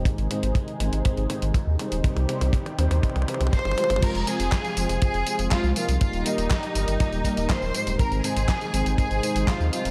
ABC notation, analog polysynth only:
X:1
M:4/4
L:1/8
Q:1/4=121
K:Fdor
V:1 name="Analog polysynth"
[A,,A,CEc] [A,,A,CEc] z [A,,A,CEc]2 [A,,A,CEc] z [C,G,CEc]- | [C,G,CEc] [C,G,CEc] z [C,G,CEc]2 [C,G,CEc] z [A,CFc]- | [A,CFc] [A,CFc] z [A,CFc]2 [A,CFc]2 [G,B,EB]- | [G,B,EB] [G,B,EB] z [G,B,EB]2 [G,B,EB]2 [A,,A,CEc]- |
[A,,A,CEc] [A,,A,CEc] z [A,,A,CEc]2 [A,,A,CEc]2 [C,G,CEc] |]